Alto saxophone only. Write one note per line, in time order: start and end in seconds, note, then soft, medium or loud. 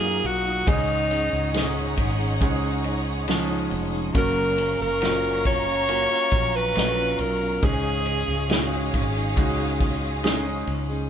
0.00 0.28 G#4 medium
0.26 0.70 F#4 loud
0.69 1.98 D#4 medium
4.18 4.77 A#4 loud
4.82 5.42 A#4 loud
5.47 6.57 C#5 loud
6.56 7.22 B4 loud
7.21 7.66 A#4 medium
7.65 8.94 G#4 medium